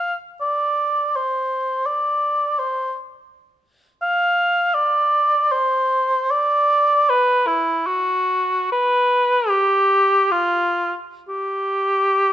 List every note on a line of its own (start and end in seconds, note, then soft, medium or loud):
0.00 0.16 F5 medium
0.41 1.17 D5 medium
1.16 1.87 C5 medium
1.86 2.60 D5 medium
2.59 2.96 C5 medium
4.02 4.76 F5 loud
4.74 5.53 D5 loud
5.52 6.32 C5 medium
6.31 7.11 D5 loud
7.10 7.49 B4 loud
7.47 7.88 E4 medium
7.87 8.71 F#4 medium
8.72 9.50 B4 loud
9.49 10.33 G4 loud
10.32 10.93 F4 loud
11.29 12.33 G4 medium